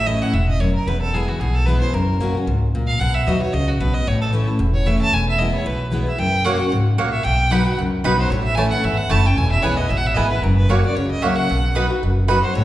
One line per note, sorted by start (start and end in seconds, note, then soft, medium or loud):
0.00 0.19 A1 medium
0.00 0.32 A2 loud
0.06 0.21 E3 medium
0.06 0.22 A3 medium
0.06 0.22 C#4 medium
0.06 0.20 E4 medium
0.06 0.23 D#5 medium
0.22 0.34 C#4 soft
0.22 0.33 E4 medium
0.22 0.35 F#5 loud
0.33 0.72 E1 medium
0.33 0.59 G#2 medium
0.33 0.48 E5 medium
0.49 0.62 D#5 loud
0.60 0.86 F#2 medium
0.60 0.74 C#5 medium
0.75 0.89 A#4 medium
0.87 1.25 E1 medium
0.87 1.38 E2 loud
0.87 1.01 B4 medium
1.01 1.15 A4 medium
1.14 1.28 E3 medium
1.14 1.29 G#3 medium
1.14 1.29 B3 medium
1.14 1.27 E4 loud
1.14 1.30 G#4 medium
1.28 1.41 B3 soft
1.28 1.40 E4 medium
1.28 1.41 F#4 medium
1.40 1.79 B1 medium
1.40 1.92 B2 medium
1.40 1.56 G#4 medium
1.54 1.68 A4 medium
1.66 1.81 E3 medium
1.66 1.82 G#3 medium
1.66 1.82 B3 medium
1.66 1.80 E4 loud
1.66 1.80 B4 medium
1.80 1.94 B3 soft
1.80 1.93 E4 medium
1.80 1.95 C5 medium
1.93 2.32 F#1 medium
1.93 2.45 F#2 medium
1.93 2.47 A#4 medium
2.20 2.35 F#3 medium
2.20 2.35 A#3 medium
2.20 2.35 C#4 medium
2.20 2.33 F#4 loud
2.35 2.48 C#4 soft
2.35 2.46 F#4 medium
2.47 2.85 C#2 medium
2.47 2.73 G#2 medium
2.75 3.00 A#2 medium
2.87 3.01 F5 loud
2.99 3.19 B1 medium
2.99 3.51 B2 loud
2.99 3.16 F#5 loud
3.15 3.29 E5 medium
3.27 3.49 D#2 medium
3.27 3.41 F#3 medium
3.27 3.41 B3 medium
3.27 3.42 D#4 medium
3.27 3.40 F#4 loud
3.27 3.41 D#5 loud
3.41 3.54 D#4 medium
3.41 3.53 F#4 medium
3.41 3.55 C#5 medium
3.53 3.76 C#2 medium
3.53 3.79 C#3 medium
3.53 3.69 D#5 loud
3.68 3.82 F#4 medium
3.80 4.02 B1 medium
3.80 4.06 B2 medium
3.80 3.95 B4 medium
3.94 4.09 D#5 loud
4.06 4.45 A1 medium
4.06 4.58 A2 loud
4.06 4.21 C#5 medium
4.21 4.28 A4 medium
4.33 4.47 E3 medium
4.33 4.47 A3 medium
4.33 4.48 C#4 loud
4.33 4.46 E4 medium
4.47 4.60 C#4 soft
4.47 4.59 E4 medium
4.59 4.98 E1 medium
4.59 5.10 E2 medium
4.74 4.88 C#5 loud
4.86 5.11 E3 medium
4.86 5.12 A3 medium
4.86 5.12 C#4 medium
4.86 5.12 E4 medium
4.86 5.01 E5 loud
5.01 5.15 A5 loud
5.12 5.51 E1 medium
5.12 5.64 E2 loud
5.12 5.28 G#5 loud
5.29 5.40 E5 loud
5.39 5.54 E3 medium
5.39 5.54 G#3 medium
5.39 5.54 B3 medium
5.39 5.53 E4 loud
5.39 5.54 D#5 medium
5.54 5.66 B3 soft
5.54 5.65 E4 medium
5.54 5.68 C#5 medium
5.66 6.04 B1 medium
5.66 6.17 B2 medium
5.66 5.93 B4 medium
5.92 6.06 E3 medium
5.92 6.07 G#3 medium
5.92 6.07 B3 loud
5.92 6.05 E4 medium
6.07 6.19 B3 soft
6.07 6.18 E4 medium
6.07 6.20 E5 medium
6.18 6.57 F#1 medium
6.18 6.69 F#2 medium
6.18 6.46 G5 loud
6.45 6.59 F#3 medium
6.45 6.55 A#3 medium
6.45 6.60 A#3 medium
6.45 6.60 C#4 medium
6.45 6.55 F#4 medium
6.45 6.58 F#4 loud
6.45 6.55 C#5 loud
6.45 6.72 F#5 loud
6.45 6.55 F#5 loud
6.59 6.72 C#4 medium
6.59 6.71 F#4 medium
6.72 7.11 C#2 medium
6.72 6.97 G#2 medium
6.98 7.24 A#2 medium
6.98 7.08 A#3 loud
6.98 7.08 F#4 medium
6.98 7.08 C#5 loud
6.98 7.09 F#5 medium
7.12 7.25 E5 loud
7.24 7.63 B1 medium
7.24 7.75 B2 medium
7.24 7.53 G5 loud
7.51 7.65 F#3 medium
7.51 7.66 B3 medium
7.51 7.61 D#4 medium
7.51 7.66 D#4 loud
7.51 7.65 F#4 medium
7.51 7.61 B4 loud
7.51 7.78 F#5 medium
7.51 7.62 F#5 loud
7.51 7.62 B5 loud
7.66 7.78 D#4 soft
7.66 7.77 F#4 medium
7.79 8.01 C#2 medium
7.79 8.29 F#2 medium
8.04 8.27 B1 medium
8.04 8.30 F#3 medium
8.04 8.30 B3 medium
8.04 8.14 D#4 loud
8.04 8.31 D#4 medium
8.04 8.31 F#4 medium
8.04 8.15 B4 loud
8.04 8.15 F#5 loud
8.04 8.15 B5 loud
8.19 8.32 C5 loud
8.30 8.69 A1 loud
8.30 8.82 A2 loud
8.30 8.43 C#5 medium
8.44 8.57 E5 loud
8.55 8.71 E3 medium
8.55 8.67 A3 medium
8.55 8.72 A3 medium
8.55 8.72 C#4 medium
8.55 8.67 E4 medium
8.55 8.71 E4 medium
8.55 8.68 C#5 medium
8.55 8.70 G#5 loud
8.55 8.68 A5 loud
8.71 8.85 C#4 soft
8.71 8.83 E4 medium
8.71 8.86 F#5 medium
8.84 9.07 G#1 medium
8.84 9.35 E2 loud
8.84 8.99 E5 medium
8.98 9.13 F#5 loud
9.09 9.33 F#1 medium
9.09 9.24 E3 medium
9.09 9.20 A3 medium
9.09 9.25 A3 medium
9.09 9.25 C#4 loud
9.09 9.20 E4 loud
9.09 9.23 E4 loud
9.09 9.20 C#5 loud
9.09 9.21 A5 loud
9.09 9.28 A5 loud
9.24 9.37 C#4 soft
9.24 9.36 E4 medium
9.24 9.39 G5 loud
9.37 9.56 E1 medium
9.37 9.88 E2 loud
9.37 9.51 G#5 loud
9.52 9.64 E5 loud
9.62 9.86 B1 medium
9.62 9.77 E3 medium
9.62 9.78 G#3 medium
9.62 9.73 B3 medium
9.62 9.78 B3 medium
9.62 9.73 E4 loud
9.62 9.77 E4 medium
9.62 9.74 B4 loud
9.62 9.79 C#5 loud
9.62 9.74 G#5 loud
9.77 9.91 B3 soft
9.77 9.89 E4 medium
9.77 9.90 D#5 medium
9.89 10.13 A1 medium
9.89 10.41 B2 medium
9.89 9.99 E5 medium
9.97 10.08 F#5 loud
10.07 10.16 E5 medium
10.14 10.39 G#1 medium
10.14 10.30 E3 medium
10.14 10.31 G#3 medium
10.14 10.26 B3 medium
10.14 10.31 B3 medium
10.14 10.26 E4 medium
10.14 10.30 E4 loud
10.14 10.27 B4 medium
10.14 10.29 D#5 medium
10.14 10.27 G#5 medium
10.30 10.43 B3 soft
10.30 10.42 E4 medium
10.30 10.44 B4 medium
10.43 10.82 F#1 loud
10.43 10.94 F#2 medium
10.43 10.56 A#4 medium
10.56 10.72 B4 medium
10.69 10.83 F#3 medium
10.69 10.79 A#3 medium
10.69 10.84 A#3 medium
10.69 10.84 C#4 medium
10.69 10.80 F#4 medium
10.69 10.83 F#4 medium
10.69 10.80 C#5 loud
10.69 10.84 C#5 medium
10.69 10.80 F#5 medium
10.84 10.97 C#4 medium
10.84 10.96 F#4 medium
10.84 10.97 D5 loud
10.95 11.35 C#2 medium
10.95 11.47 C#3 medium
10.95 11.10 C#5 medium
11.11 11.24 D#5 loud
11.22 11.48 F#3 medium
11.22 11.32 A#3 medium
11.22 11.48 A#3 medium
11.22 11.49 C#4 medium
11.22 11.32 F#4 medium
11.22 11.49 F#4 medium
11.22 11.33 C#5 medium
11.22 11.38 E5 loud
11.22 11.33 F#5 loud
11.36 11.75 F#5 loud
11.49 11.88 B1 medium
11.49 12.00 B2 loud
11.75 11.89 F#3 medium
11.75 11.90 B3 medium
11.75 11.85 D#4 medium
11.75 11.90 D#4 medium
11.75 11.89 F#4 loud
11.75 11.86 B4 medium
11.75 11.86 F#5 loud
11.75 11.86 B5 loud
11.90 12.03 D#4 medium
11.90 12.02 F#4 medium
12.03 12.41 F#1 medium
12.03 12.53 F#2 medium
12.28 12.42 F#3 medium
12.28 12.43 B3 loud
12.28 12.38 D#4 medium
12.28 12.43 D#4 loud
12.28 12.42 F#4 loud
12.28 12.38 B4 loud
12.28 12.38 F#5 loud
12.28 12.38 B5 loud
12.42 12.55 D#4 medium
12.42 12.54 F#4 medium
12.42 12.56 C5 medium
12.54 12.64 A1 medium
12.54 12.64 A2 loud
12.54 12.64 C#5 medium